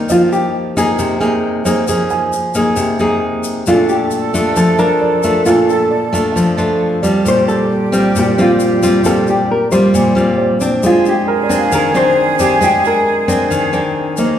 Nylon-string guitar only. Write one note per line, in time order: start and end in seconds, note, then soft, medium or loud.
0.00 0.72 A#3 medium
0.00 0.73 D#4 medium
0.10 0.97 F3 medium
0.77 1.17 A#3 medium
0.77 1.17 D#4 medium
0.77 1.18 G#4 medium
0.99 1.86 C3 medium
1.20 1.62 A#3 medium
1.20 1.62 D#4 medium
1.20 1.62 G#4 medium
1.65 1.84 A#3 medium
1.65 1.84 D#4 medium
1.65 1.85 G#4 medium
1.88 2.75 F3 medium
1.88 2.33 A#3 soft
1.88 2.33 D#4 soft
1.88 2.33 G#4 medium
2.55 2.96 A#3 medium
2.55 2.97 D#4 medium
2.55 2.97 G#4 medium
2.76 3.64 C3 medium
2.99 3.63 A#3 medium
2.99 3.63 D#4 medium
2.99 3.64 G#4 medium
3.67 4.54 A#2 medium
3.67 4.30 A3 medium
3.67 4.31 D4 medium
3.67 4.31 F4 medium
4.34 4.75 A3 medium
4.34 4.75 D4 medium
4.34 4.76 F4 medium
4.56 5.43 F3 medium
4.79 5.20 D4 medium
4.79 5.20 F4 medium
5.24 5.42 A3 medium
5.24 5.43 D4 medium
5.24 5.43 F4 medium
5.46 6.33 A#2 medium
5.46 5.91 A3 medium
5.46 5.91 D4 soft
5.46 5.91 F4 medium
6.13 6.54 A3 medium
6.13 6.54 D4 medium
6.13 6.54 F4 medium
6.36 7.23 F3 medium
6.58 6.99 A3 medium
6.58 6.99 D4 medium
6.58 6.99 F4 medium
7.03 7.89 G3 medium
7.03 7.89 C4 medium
7.03 7.89 F4 medium
7.25 8.12 A#2 medium
7.92 8.33 G3 medium
7.92 8.33 C4 medium
7.92 8.34 F4 medium
8.16 9.02 A#2 medium
8.38 8.79 G3 medium
8.38 8.79 C4 medium
8.38 8.79 F4 medium
8.82 9.01 G3 medium
8.82 9.01 C4 medium
8.82 9.01 F4 medium
9.05 9.92 A#2 medium
9.05 9.49 G3 soft
9.05 9.49 C4 medium
9.05 9.49 F4 soft
9.72 10.13 G3 medium
9.72 10.13 C4 medium
9.72 10.13 F4 medium
9.94 10.81 A#2 medium
10.15 10.56 G3 medium
10.15 10.57 C4 medium
10.15 10.57 F4 medium
10.61 11.46 C4 medium
10.61 11.47 D4 medium
10.83 11.70 G#3 medium
11.49 11.91 C4 medium
11.49 11.91 D4 medium
11.72 12.59 D#3 medium
11.94 12.36 C4 medium
11.94 12.36 D4 medium
12.39 12.58 C4 medium
12.39 12.58 D4 soft
12.39 12.59 G4 medium
12.61 13.48 G#3 medium
12.61 13.25 C4 soft
12.61 13.25 D4 medium
13.28 13.70 C4 medium
13.28 13.69 D4 medium
13.51 14.38 D#3 medium
13.73 14.14 C4 medium
13.73 14.14 D4 medium
14.18 14.39 A#3 medium
14.18 14.39 D#4 soft